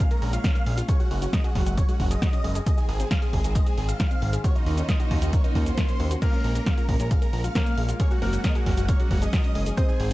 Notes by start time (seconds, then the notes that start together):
Already playing: G#3 A#3 C#4
0.11 G#3 A#4, closed hi-hat, shaker
0.22 A#1 A#4, open hi-hat
0.33 F4 F5, closed hi-hat, shaker
0.44 C#4, kick, snare, closed hi-hat, shaker
0.55 A#3, closed hi-hat, shaker
0.66 A#1 G#3, open hi-hat
0.77 F4, closed hi-hat, shaker
0.88 F#3 G#3 G#4 C#5, kick, closed hi-hat, shaker
1.00 F#4, shaker
1.11 F#1 F#4, open hi-hat
1.22 C#4 F#4, closed hi-hat, shaker
1.33 G#3 D#5, kick, snare, closed hi-hat, shaker
1.44 F#4 G#4, closed hi-hat, shaker
1.55 F#1 F#4, kick, snare, open hi-hat
1.66 F#1 F#4, closed hi-hat, shaker
1.77 C#5, kick, closed hi-hat, shaker
1.88 G#3 F#4, closed hi-hat, shaker
2.00 F#1 F#4, kick, open hi-hat
2.11 G#4 D#5, closed hi-hat, shaker
2.22 F#4, kick, snare, closed hi-hat, shaker
2.33 C#4, closed hi-hat, shaker
2.44 F#1 G#3, open hi-hat
2.55 G#4, closed hi-hat, shaker
2.66 D#3 C4 G#4 D#5, kick, closed hi-hat, shaker
2.78 D#4 G#4, shaker
2.89 G#1 G#4, open hi-hat
3.00 C4 G#4, closed hi-hat, shaker
3.11 G#3 F5, kick, snare, closed hi-hat, shaker
3.22 G#4, closed hi-hat, shaker
3.33 G#1 G#4, kick, open hi-hat
3.44 G#1 D#4 G#4, closed hi-hat, shaker
3.55 C5 D#5, kick, closed hi-hat, shaker
3.66 G#3 G#4, closed hi-hat, shaker
3.77 G#1 G#4, open hi-hat
3.88 G#4 F5, closed hi-hat, shaker
4.00 D#4, kick, snare, closed hi-hat, shaker
4.11 C4, closed hi-hat, shaker
4.22 G#1 G#3, open hi-hat
4.33 G#4, closed hi-hat, shaker
4.44 A#3 C#4 F4 F#4 C#5, kick, closed hi-hat, shaker
4.55 D#4, shaker
4.66 D#2 D#4, open hi-hat
4.77 C#4 D#4, closed hi-hat, shaker
4.89 A#3 D#5, kick, snare, closed hi-hat, shaker
5.00 D#4 F#4, closed hi-hat, shaker
5.11 D#2 D#4, kick, snare, open hi-hat
5.22 D#2 D#4, closed hi-hat, shaker
5.33 A#4 C#5, kick, closed hi-hat, swell, shaker
5.44 A#3 D#4, closed hi-hat, shaker
5.55 D#2 D#4, kick, open hi-hat
5.66 F#4 C5, closed hi-hat, shaker
5.77 D#4, kick, snare, closed hi-hat, shaker
5.89 C#4, closed hi-hat, shaker
6.00 D#2 A#3, open hi-hat
6.11 F#4, closed hi-hat, shaker
6.22 G#3 A#3 F4 A#4 F5, kick, closed hi-hat, crash, shaker
6.33 C#4 A#4, shaker
6.44 A#1 A#4, open hi-hat
6.55 A#3 A#4, closed hi-hat, shaker
6.66 G#3 F5, kick, snare, closed hi-hat, shaker
6.77 F4 A#4, closed hi-hat, shaker
6.89 A#1 A#4, kick, open hi-hat
7.00 A#1 C#4 A#4, closed hi-hat, shaker
7.11 G#4 F5, kick, closed hi-hat, shaker
7.22 G#3 A#4, closed hi-hat, shaker
7.33 A#1 A#4, open hi-hat
7.44 F4 F5, closed hi-hat, shaker
7.55 A#3 C#4 A#4, kick, snare, closed hi-hat, shaker
7.66 A#3, closed hi-hat, shaker
7.77 A#1 G#3, open hi-hat
7.89 F4, closed hi-hat, shaker
8.00 F#3 C#4 G#4 C#5, kick, closed hi-hat, shaker
8.11 F#4, shaker
8.22 F#1 A#3 F#4 A#4, open hi-hat
8.33 C#4 F#4, closed hi-hat, shaker
8.44 G#3 D#5, kick, snare, closed hi-hat, shaker
8.55 F#4 G#4, closed hi-hat, shaker
8.66 F#1 F#4, kick, snare, open hi-hat
8.77 F#1 F#4, closed hi-hat, shaker
8.89 C#5, kick, closed hi-hat, shaker
9.00 G#3 F#4, closed hi-hat, shaker
9.11 F#1 F#4, kick, open hi-hat
9.22 G#4 D#5, closed hi-hat, shaker
9.33 F#4, kick, snare, closed hi-hat, shaker
9.44 C#4, closed hi-hat, shaker
9.55 F#1 G#3, open hi-hat
9.66 G#4, closed hi-hat, shaker
9.77 D#3 C4 G#4 C5 D#5, kick, closed hi-hat, shaker
9.88 D#4 G#4, shaker
10.00 G#1 G#4, open hi-hat